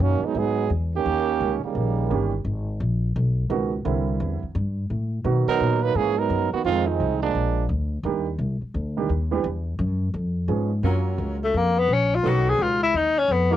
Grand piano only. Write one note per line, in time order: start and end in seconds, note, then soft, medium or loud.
2.10 2.30 D#3 medium
2.10 2.30 G3 medium
2.10 2.30 A#3 medium
2.10 2.31 C#4 medium
2.10 2.31 G4 medium
3.50 3.70 D#3 medium
3.50 3.70 G#3 soft
3.50 3.70 A#3 soft
3.50 3.70 B3 medium
3.50 3.71 F#4 medium
3.85 4.38 D3 medium
3.85 4.38 G3 medium
3.85 4.38 A#3 medium
3.85 4.38 C4 medium
3.85 4.38 E4 medium
5.25 5.78 D#3 medium
5.25 5.78 F#3 soft
5.25 5.78 A#3 medium
5.25 5.78 B3 medium
5.25 5.78 F#4 medium
6.65 7.18 D#3 medium
6.65 7.18 F3 medium
6.65 7.18 G#3 medium
6.65 7.18 C4 medium
6.65 7.18 F4 medium
8.05 8.25 D#3 medium
8.05 8.25 G3 medium
8.05 8.25 A#3 medium
8.05 8.25 D4 soft
8.05 8.25 G4 medium
8.97 9.08 D#3 medium
8.97 9.08 G3 soft
8.97 9.08 A#3 medium
8.97 9.08 D4 medium
8.97 9.08 G4 medium
9.31 9.42 E3 medium
9.31 9.43 G3 medium
9.31 9.43 B3 medium
9.31 9.43 D4 medium
9.31 9.43 G4 medium
10.48 10.69 F3 soft
10.48 10.69 G#3 soft
10.48 10.69 B3 soft
10.48 10.69 C#4 soft
10.48 10.69 G#4 soft
10.83 11.81 F#3 soft
10.83 11.81 A#3 soft
10.83 11.81 C#4 soft
10.83 11.81 F4 soft
10.83 11.81 A#4 medium
12.22 12.76 F#3 soft
12.22 12.76 B3 soft
12.22 12.76 C#4 soft
12.22 12.76 D#4 soft
12.22 12.76 A4 medium
13.50 13.57 E3 medium
13.50 13.57 G#3 medium
13.50 13.57 B3 soft
13.50 13.57 D#4 medium
13.50 13.57 F#4 medium